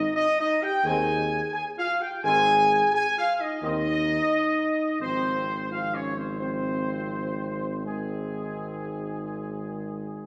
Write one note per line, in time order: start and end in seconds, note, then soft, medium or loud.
0.00 0.15 D#4 loud
0.00 0.14 D#5 loud
0.16 0.26 D#4 loud
0.16 0.37 D#5 loud
0.39 0.60 D#4 loud
0.39 0.61 D#5 loud
0.62 0.73 G4 loud
0.62 0.85 G5 loud
0.84 1.42 D#2 medium
0.84 1.09 D#3 medium
0.84 1.09 C4 medium
0.84 1.50 G#4 medium
0.84 1.52 G#5 loud
1.53 1.64 G#4 loud
1.53 1.64 G#5 loud
1.78 1.99 F4 medium
1.78 1.99 F5 loud
2.00 2.22 G4 medium
2.00 2.24 G5 medium
2.23 2.81 G#1 medium
2.23 2.48 D#3 medium
2.23 2.48 C4 medium
2.23 2.90 G#4 loud
2.23 2.89 G#5 loud
2.94 3.04 G#4 loud
2.94 3.15 G#5 loud
3.17 3.38 F4 medium
3.17 3.39 F5 loud
3.40 3.61 D#4 medium
3.40 3.62 D#5 medium
3.62 4.20 D#2 medium
3.62 3.87 D#3 medium
3.62 3.87 C4 medium
3.62 4.97 D#4 loud
3.62 4.98 D#5 loud
5.00 10.26 G#1 medium
5.00 5.66 F3 medium
5.00 5.66 C4 medium
5.00 5.66 C5 loud
5.70 6.36 F3 medium
5.70 6.36 C4 medium
5.70 5.81 F4 medium
5.70 5.94 F5 loud
5.93 6.15 C#4 medium
5.93 6.17 C#5 medium
6.16 6.38 C4 medium
6.16 6.38 C5 medium
6.39 7.82 F3 medium
6.39 7.81 C4 medium
6.39 7.82 C4 medium
6.39 7.81 C5 medium
7.86 10.26 D#3 medium
7.86 10.26 G#3 medium
7.86 10.26 C4 medium
7.86 10.26 G#4 medium